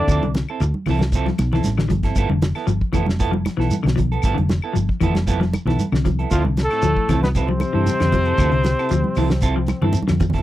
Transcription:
Already playing: D3 D4 D5
0.07 D2 E4, kick, closed hi-hat, claves, shekere
0.11 F3 C4 A4
0.21 C2 D3, muted clean electric guitar stroke, closed hi-hat, high conga
0.34 muted clean electric guitar stroke, snare, closed hi-hat, high conga, shekere
0.49 C4 E4 A4, claves
0.60 D2, muted clean electric guitar stroke, closed hi-hat, shekere
0.74 high conga
0.86 C2 E3 F3 C4 E4, open hi-hat, low conga, claves, shekere
0.90 A4
0.99 snare, high conga
1.03 muted clean electric guitar stroke
1.12 F3 C4 E4, kick, closed hi-hat, shekere
1.16 A4
1.26 F3, muted clean electric guitar stroke, snare, high conga
1.38 B1, muted clean electric guitar stroke, snare, closed hi-hat, high conga, claves, shekere
1.52 E3 C4 E4 A4, snare, low conga
1.64 A1, snare, closed hi-hat, high conga, shekere
1.78 D3, muted clean electric guitar stroke, snare, claves
1.89 G1 F3, muted clean electric guitar stroke, kick, closed hi-hat, high conga, low conga, shekere
2.03 C4 E4 A4, kick, snare, closed hi-hat
2.15 G1 F3 B3 E4 A4, kick, closed hi-hat, claves, shekere
2.29 F1 D3, muted clean electric guitar stroke, high conga
2.42 muted clean electric guitar stroke, snare, closed hi-hat, high conga, shekere
2.55 B3 E4 A4, snare, closed hi-hat, claves
2.67 G1 F3, muted clean electric guitar stroke, closed hi-hat, shekere
2.81 kick
2.93 F1 E3 F3 B3 E4 A4, kick, closed hi-hat, low conga, claves, shekere
3.06 muted clean electric guitar stroke, snare, high conga
3.19 F3 B3 E4 A4, kick, closed hi-hat, shekere
3.31 F3, muted clean electric guitar stroke, high conga
3.45 muted clean electric guitar stroke, snare, closed hi-hat, high conga, claves, shekere
3.57 B1 E3 B3 E4 A4, snare
3.71 closed hi-hat, high conga, shekere
3.83 B1 D3, muted clean electric guitar stroke, closed hi-hat, claves
3.87 snare
3.96 F3, muted clean electric guitar stroke, kick, closed hi-hat, low conga, shekere
4.12 B3 A4, closed hi-hat
4.22 G1 F3 B3 E4 A4, kick, closed hi-hat, claves, shekere
4.35 F1 D3, muted clean electric guitar stroke, closed hi-hat, high conga
4.49 muted clean electric guitar stroke, snare, closed hi-hat, high conga, shekere
4.62 B3 E4 A4, claves
4.73 G1 F3, muted clean electric guitar stroke, closed hi-hat, shekere
4.89 kick
5.00 F1 E3 F3 B3 E4 A4, kick, closed hi-hat, low conga, claves, shekere
5.15 muted clean electric guitar stroke, snare, high conga
5.27 F3 B3 E4 A4, kick, closed hi-hat, shekere
5.40 F3, muted clean electric guitar stroke, snare, high conga
5.53 muted clean electric guitar stroke, closed hi-hat, high conga, claves, shekere
5.65 B1 E3 B3 E4 A4, snare, low conga
5.79 closed hi-hat, high conga, shekere
5.92 C2 D3, muted clean electric guitar stroke, snare, claves
6.05 F3, muted clean electric guitar stroke, kick, closed hi-hat, high conga, low conga, shekere
6.19 B3 E4 A4, closed hi-hat
6.31 D2 F2 F3 C4 E4 F4 A4, kick, closed hi-hat, claves, shekere
6.44 C2 D3, muted clean electric guitar stroke, high conga
6.57 muted clean electric guitar stroke, snare, closed hi-hat, high conga, shekere
6.64 A2 A3 A4
6.70 C4 E4 A4, snare, closed hi-hat, claves
6.82 D2 F3, closed hi-hat, shekere
6.96 kick
7.09 C2 E3 F3 C4 E4 A4, kick, snare, closed hi-hat, low conga, claves, shekere
7.22 B2 B3 B4, muted clean electric guitar stroke, snare, high conga
7.35 C3 F3 C4 E4 A4 C5, kick, closed hi-hat, shekere
7.48 F3, muted clean electric guitar stroke, high conga
7.60 muted clean electric guitar stroke, closed hi-hat, high conga, claves, shekere
7.73 G2 E3 C4 E4 A4
7.86 snare, closed hi-hat, high conga, shekere
8.00 F2 D3, muted clean electric guitar stroke, snare, closed hi-hat, claves
8.12 F3, muted clean electric guitar stroke, kick, closed hi-hat, high conga, low conga, shekere
8.25 C4 E4 A4, closed hi-hat
8.38 D2 F3 C4 E4 A4, kick, closed hi-hat, claves, shekere
8.52 C2 D3, muted clean electric guitar stroke, closed hi-hat
8.63 muted clean electric guitar stroke, snare, closed hi-hat, high conga, shekere
8.78 C4 E4 A4, snare, claves
8.89 D2 F3, muted clean electric guitar stroke, closed hi-hat, shekere
9.04 high conga
9.15 C2 E3 F3 C4 E4 A4, open hi-hat, low conga, claves, shekere
9.30 muted clean electric guitar stroke, snare, high conga
9.41 F3 C4 E4 A4, kick, closed hi-hat, shekere
9.56 F3, muted clean electric guitar stroke
9.67 muted clean electric guitar stroke, snare, closed hi-hat, high conga, claves, shekere
9.82 G2 E3 C4 E4 A4, low conga
9.92 closed hi-hat, high conga, shekere
10.02 high conga
10.08 F2 D3, muted clean electric guitar stroke, snare, claves
10.12 low conga
10.20 F3, muted clean electric guitar stroke, kick, closed hi-hat, low conga, shekere
10.30 closed hi-hat, low conga
10.34 C4 E4 A4, kick, snare
10.39 low conga

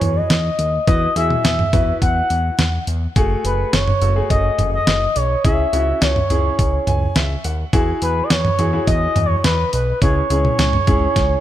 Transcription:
Already playing: E4 F#4 G#4 C#5
0.01 E2, closed hi-hat, mid tom
0.16 D#5
0.30 E2, snare, closed hi-hat
0.59 D#2, closed hi-hat
0.87 E2 E4 F#4 B4 D#5, kick, closed hi-hat
1.16 E2 E4 F#4 G#4 E5, closed hi-hat
1.30 mid tom
1.45 E2, snare, closed hi-hat
1.59 mid tom
1.73 E2 E4 F#4 B4, kick, closed hi-hat
2.02 E2 F#5, kick, closed hi-hat
2.30 E2, closed hi-hat
2.59 E2, snare, closed hi-hat
2.87 E2, closed hi-hat
3.16 F#1 A3 F#4 G#4, kick, closed hi-hat
3.45 F#1 B4, closed hi-hat
3.73 F#1 C#5, snare, closed hi-hat
3.88 mid tom
4.02 F#1 A3 F#4 A4, closed hi-hat
4.16 A3 F#4 G#4
4.30 F#1 D#5, kick, closed hi-hat
4.59 F#1, closed hi-hat, mid tom
4.73 D#5
4.87 F#1, snare, closed hi-hat
5.16 B1 C#5, closed hi-hat
5.45 C#2 C#4 E4 G#4 E5, kick, closed hi-hat
5.73 C#2 C#4 E4 F#4, closed hi-hat
6.02 C#2 C#5, snare, closed hi-hat
6.16 mid tom
6.30 C#2 C#4 E4 G#4, closed hi-hat
6.59 C#2, kick, closed hi-hat
6.87 C#2 G#5, closed hi-hat, mid tom
7.16 C#2 E5, snare, closed hi-hat
7.44 D#2 F#5, closed hi-hat
7.73 E2 E4 F#4 G#4, kick, closed hi-hat
8.02 E2 B4, closed hi-hat
8.23 D#5
8.30 E2 C#5, snare, closed hi-hat
8.45 mid tom
8.59 E2 E4 F#4 G#4, closed hi-hat
8.73 E4 F#4 G#4
8.87 E2 D#5, kick, closed hi-hat
9.16 E2, closed hi-hat, mid tom
9.26 C#5
9.44 E2 B4, snare, closed hi-hat
9.73 B1 B4, closed hi-hat
10.02 C#2 C#4 E4 G#4 C#5, kick, closed hi-hat
10.30 C#2 C#4 E4 G#4, closed hi-hat
10.45 mid tom
10.59 C#2, snare, closed hi-hat
10.73 mid tom
10.87 C#2 C#4 E4 G#4, kick, closed hi-hat
11.16 C#2, kick, snare, closed hi-hat

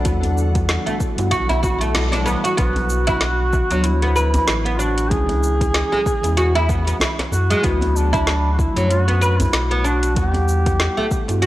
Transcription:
Already playing: D4 A4 F#5
0.03 E2 E3 G3 B3 E4 F#4, kick, closed hi-hat, shaker
0.23 closed hi-hat, djembe bass, shaker
0.38 shaker
0.54 G3 B3 E4 F#4, kick, closed hi-hat, shaker
0.64 G3
0.69 snare, closed hi-hat, shaker
0.83 A3 E4, closed hi-hat
0.87 djembe tone, shaker
1.00 kick, shaker
1.16 G2 G3 B3 E4 F#4, closed hi-hat, djembe slap, shaker
1.31 B1 F#4, kick, closed hi-hat, shaker
1.49 E4, closed hi-hat, djembe slap, djembe bass, shaker
1.63 F#4, kick, shaker
1.81 A3, closed hi-hat, djembe slap, shaker
1.95 snare, closed hi-hat, djembe bass, shaker
2.12 D4, snare, closed hi-hat, djembe slap, djembe tone, shaker
2.26 B3, djembe slap, djembe tone, shaker
2.44 F#4, closed hi-hat, shaker
2.57 B1 F#3 B3 D4 F#4, kick, closed hi-hat, shaker
2.76 closed hi-hat, djembe bass
2.90 shaker
3.07 F#3 B3 D4 E4 F#4, kick, closed hi-hat, shaker
3.21 snare, closed hi-hat, shaker
3.53 kick, shaker
3.69 D2 F#3 B3 D4, closed hi-hat, djembe slap, shaker
3.74 F#4
3.84 E4, closed hi-hat, shaker
4.02 B3, closed hi-hat, djembe tone
4.16 B4, shaker
4.34 closed hi-hat, djembe bass, shaker
4.47 A1, snare, closed hi-hat, shaker
4.65 B3, closed hi-hat
4.78 D4 F#4, shaker
4.98 closed hi-hat, shaker
5.10 C#2 E3 G#3 C#4 E4 G#4, kick, closed hi-hat, shaker
5.29 closed hi-hat, djembe bass
5.43 shaker
5.59 E3 G#3 C#4 E4, kick, closed hi-hat, shaker
5.74 snare, closed hi-hat, shaker
5.92 G#3, djembe tone
6.06 kick, shaker
6.21 E2 E3 G#3 C#4, closed hi-hat, djembe slap, shaker
6.26 E4
6.37 F#4, closed hi-hat, shaker
6.55 E4, closed hi-hat, djembe slap
6.69 B3, kick, shaker
6.87 B3, closed hi-hat, djembe slap, shaker
7.00 snare, closed hi-hat, djembe bass, shaker
7.19 snare, closed hi-hat, djembe slap, djembe tone
7.32 F#2 F#4, djembe tone, shaker
7.50 G#3, closed hi-hat, shaker
7.61 D2 F#3 A3 B3 D4 E4 F#4, kick, closed hi-hat, shaker
7.81 closed hi-hat, djembe bass
7.96 D4, shaker
8.12 F#3 A3 D4 E4, kick, closed hi-hat, shaker
8.27 snare, closed hi-hat, shaker
8.52 F#4
8.59 E4, kick, shaker
8.74 F#2 F#3 A3 D4, closed hi-hat, djembe slap, shaker
8.78 F#4
8.90 F#4, closed hi-hat, shaker
9.08 B3, closed hi-hat, djembe tone
9.21 B4, shaker
9.40 E4, closed hi-hat, djembe bass, shaker
9.53 B1, snare, closed hi-hat, shaker
9.71 B3, closed hi-hat
9.84 D4 F#4, shaker
10.03 closed hi-hat, shaker
10.15 E2 G3 B3 E4 G4 F#5, kick, closed hi-hat, shaker
10.34 closed hi-hat, djembe bass
10.48 shaker
10.64 G3 B3 E4 F#5, kick, closed hi-hat, shaker
10.80 snare, closed hi-hat, shaker
10.97 A3, djembe tone
11.11 kick, shaker
11.27 G2 G3 B3 E4 F#4, closed hi-hat, djembe slap, shaker
11.42 F#4, closed hi-hat, shaker

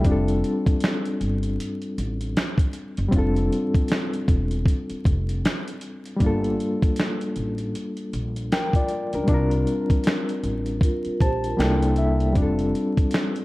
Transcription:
0.01 F1 G3 C4, kick, closed hi-hat
0.06 D4 F4
0.12 A4
0.28 closed hi-hat
0.44 closed hi-hat
0.66 kick, closed hi-hat
0.80 snare, closed hi-hat
0.85 finger snap
1.05 closed hi-hat
1.21 G1, closed hi-hat
1.43 closed hi-hat
1.60 closed hi-hat
1.82 closed hi-hat
1.98 A1, closed hi-hat
2.21 closed hi-hat
2.37 finger snap, snare, closed hi-hat
2.58 kick, closed hi-hat
2.73 closed hi-hat
2.97 F#1, closed hi-hat
3.08 G3 C4, kick
3.12 F1 D4 F4, closed hi-hat
3.18 A4
3.36 closed hi-hat
3.52 closed hi-hat
3.74 kick, closed hi-hat
3.88 snare, closed hi-hat
3.93 finger snap
4.14 closed hi-hat
4.28 E1, kick, closed hi-hat
4.51 closed hi-hat
4.66 kick, closed hi-hat
4.90 muted upright bass stroke, closed hi-hat
5.05 F1, kick, closed hi-hat
5.29 closed hi-hat
5.45 finger snap, snare, closed hi-hat
5.68 closed hi-hat
5.81 closed hi-hat
6.06 closed hi-hat
6.16 G3 A#3, kick
6.20 G1 D4 F4, closed hi-hat
6.26 A4
6.44 closed hi-hat
6.60 closed hi-hat
6.82 kick, closed hi-hat
6.96 snare, closed hi-hat
7.01 finger snap
7.21 closed hi-hat
7.36 A1, closed hi-hat
7.58 closed hi-hat
7.75 closed hi-hat
7.97 closed hi-hat
8.13 A#1, closed hi-hat
8.36 closed hi-hat
8.52 A#4 G5, finger snap, snare, closed hi-hat
8.73 F4 D5, kick, closed hi-hat
8.88 closed hi-hat
9.13 C#2 D4 A#4, closed hi-hat
9.24 G3 C4
9.28 C2 D4 F4, kick, closed hi-hat
9.34 A#4
9.51 closed hi-hat
9.67 closed hi-hat
9.90 kick, closed hi-hat
10.04 snare, closed hi-hat
10.08 finger snap
10.29 closed hi-hat
10.43 A1, closed hi-hat
10.66 closed hi-hat
10.81 F4 A#4, kick, closed hi-hat
11.05 muted upright bass stroke, closed hi-hat
11.21 A#1 G4 C5 A5, kick, closed hi-hat
11.44 F4 A#4, closed hi-hat
11.57 C2 G3 A#3 D4 E4 G5, snare, closed hi-hat
11.62 A4, finger snap
11.82 closed hi-hat
11.96 E5, closed hi-hat
12.20 closed hi-hat
12.32 F1 G3 C4, kick, closed hi-hat
12.37 D4 F4
12.42 A4
12.59 closed hi-hat
12.75 closed hi-hat
12.97 kick, closed hi-hat
13.11 snare, closed hi-hat
13.15 finger snap
13.36 closed hi-hat

